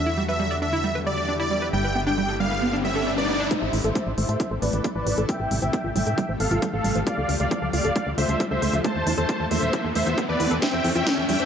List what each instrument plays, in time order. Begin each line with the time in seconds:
Already playing: analog synth bass E2, ambient pad D3 G3 B3 E4 G4, supersaw synth E5, riser
0.06 synth arpeggio sound E4
0.18 synth arpeggio sound G3
0.29 synth arpeggio sound B4, supersaw synth E5
0.40 synth arpeggio sound G3
0.51 synth arpeggio sound D5
0.62 synth arpeggio sound D4, supersaw synth E5
0.73 synth arpeggio sound E4
0.84 synth arpeggio sound G3
0.95 synth arpeggio sound B4
1.06 synth arpeggio sound G3, supersaw synth D5
1.18 synth arpeggio sound D5
1.29 synth arpeggio sound D4
1.40 synth arpeggio sound E4, supersaw synth D5
1.51 synth arpeggio sound G3
1.62 synth arpeggio sound B4
1.73 analog synth bass G1, synth arpeggio sound G3, ambient pad A3, supersaw synth G5
1.84 synth arpeggio sound B4
1.95 synth arpeggio sound B3
2.07 synth arpeggio sound D4, supersaw synth G5
2.18 synth arpeggio sound G3
2.29 synth arpeggio sound A4
2.40 synth arpeggio sound G3, supersaw synth F5
2.51 synth arpeggio sound B4
2.62 synth arpeggio sound B3
2.73 synth arpeggio sound D4
2.84 synth arpeggio sound G3, supersaw synth E5
2.96 synth arpeggio sound A4
3.07 synth arpeggio sound G3
3.18 synth arpeggio sound B4, supersaw synth D5
3.29 synth arpeggio sound B3
3.40 synth arpeggio sound D4
3.51 ambient pad C3 E3 A3 E4 A4, synth arpeggio sound A3, supersaw synth C5 E5, kick, closed hi-hat, riser
3.62 analog synth bass A1, synth arpeggio sound A5
3.73 analog synth bass A1, synth arpeggio sound E4, open hi-hat
3.84 analog synth bass A1, synth arpeggio sound A4, supersaw synth C5 E5, closed hi-hat
3.95 synth arpeggio sound A3, kick, closed hi-hat
4.07 analog synth bass A1, synth arpeggio sound E5
4.17 analog synth bass A1, synth arpeggio sound A3, supersaw synth C5 E5, open hi-hat
4.29 analog synth bass A2, synth arpeggio sound A5, closed hi-hat
4.40 synth arpeggio sound E4, kick, closed hi-hat
4.51 analog synth bass A1, synth arpeggio sound A4
4.62 analog synth bass A1, synth arpeggio sound A3, supersaw synth B4 D5, open hi-hat
4.73 analog synth bass A1, synth arpeggio sound E5, closed hi-hat
4.84 synth arpeggio sound A3, kick, closed hi-hat
4.95 analog synth bass A1, supersaw synth B4 D5, synth arpeggio sound A5
5.06 analog synth bass A1, synth arpeggio sound E4, open hi-hat
5.18 analog synth bass A1, synth arpeggio sound A4, closed hi-hat
5.29 ambient pad G3 F4 G4, synth arpeggio sound G3, supersaw synth E5 G5, kick, closed hi-hat
5.40 analog synth bass A1, synth arpeggio sound A4
5.51 analog synth bass A1, synth arpeggio sound G3, open hi-hat
5.62 analog synth bass A1, synth arpeggio sound C5, supersaw synth E5 G5, closed hi-hat
5.73 synth arpeggio sound C4, kick, closed hi-hat
5.84 analog synth bass A1, synth arpeggio sound F4
5.95 analog synth bass A1, synth arpeggio sound G3, supersaw synth E5 G5, open hi-hat
6.06 analog synth bass A2, synth arpeggio sound A4, closed hi-hat
6.18 synth arpeggio sound G3, kick, closed hi-hat
6.29 analog synth bass A1, synth arpeggio sound C5
6.40 analog synth bass A1, synth arpeggio sound C4, supersaw synth A4 F5, open hi-hat
6.51 analog synth bass A1, synth arpeggio sound F4, closed hi-hat
6.62 synth arpeggio sound G3, kick, closed hi-hat
6.73 analog synth bass A1, synth arpeggio sound A4, supersaw synth A4 F5
6.84 analog synth bass A1, synth arpeggio sound G3, open hi-hat
6.95 analog synth bass A1, synth arpeggio sound C5, closed hi-hat
7.06 ambient pad D3 F3 A4, synth arpeggio sound F4, supersaw synth D5 F5, kick, closed hi-hat
7.18 analog synth bass D2, synth arpeggio sound A4
7.29 analog synth bass D2, synth arpeggio sound A3, open hi-hat
7.40 analog synth bass D2, supersaw synth D5 F5, synth arpeggio sound F5, closed hi-hat
7.51 synth arpeggio sound A3, kick, closed hi-hat
7.62 analog synth bass D2, synth arpeggio sound A5
7.73 analog synth bass D2, synth arpeggio sound F4, supersaw synth D5 F5, open hi-hat
7.84 analog synth bass D1, synth arpeggio sound A4, closed hi-hat
7.96 synth arpeggio sound A3, kick, closed hi-hat
8.07 analog synth bass D2, synth arpeggio sound F5
8.18 analog synth bass D2, synth arpeggio sound A3, supersaw synth C5 E5, open hi-hat
8.29 analog synth bass D2, synth arpeggio sound A5, closed hi-hat
8.40 synth arpeggio sound F4, kick, closed hi-hat
8.51 analog synth bass D2, synth arpeggio sound A4, supersaw synth C5 E5
8.62 analog synth bass D2, synth arpeggio sound A3, open hi-hat
8.73 analog synth bass D2, synth arpeggio sound F5, closed hi-hat
8.84 ambient pad C3 E3 E4, synth arpeggio sound A3, supersaw synth C5 A5, kick, closed hi-hat
8.95 analog synth bass E2, synth arpeggio sound A5
9.06 analog synth bass E2, synth arpeggio sound E4, open hi-hat
9.17 analog synth bass E2, synth arpeggio sound A4, supersaw synth C5 A5, closed hi-hat
9.29 synth arpeggio sound A3, kick, closed hi-hat
9.40 analog synth bass E2, synth arpeggio sound E5
9.51 analog synth bass E2, synth arpeggio sound A3, supersaw synth C5 E5, open hi-hat
9.62 analog synth bass E1, synth arpeggio sound A5, closed hi-hat
9.73 synth arpeggio sound E4, kick, closed hi-hat
9.84 analog synth bass E2, synth arpeggio sound A4
9.95 analog synth bass E2, synth arpeggio sound A3, supersaw synth C5 E5, open hi-hat
10.07 analog synth bass E2, synth arpeggio sound E5, closed hi-hat
10.18 synth arpeggio sound A3, kick, closed hi-hat
10.29 analog synth bass E2, supersaw synth B4 D5, synth arpeggio sound A5
10.40 analog synth bass E2, synth arpeggio sound E4, open hi-hat
10.51 analog synth bass E2, synth arpeggio sound A4, closed hi-hat
10.62 ambient pad G3 F4 G4, synth arpeggio sound G3, supersaw synth E5 G5, kick, snare, closed hi-hat
10.73 analog synth bass F2, synth arpeggio sound C5
10.84 analog synth bass F2, synth arpeggio sound C4, open hi-hat
10.95 analog synth bass F2, synth arpeggio sound F4, supersaw synth E5 G5, closed hi-hat
11.06 synth arpeggio sound G3, kick, snare, closed hi-hat
11.17 analog synth bass F2, synth arpeggio sound A4
11.29 analog synth bass F2, synth arpeggio sound G3, supersaw synth E5 G5, open hi-hat
11.40 analog synth bass F1, synth arpeggio sound C5, closed hi-hat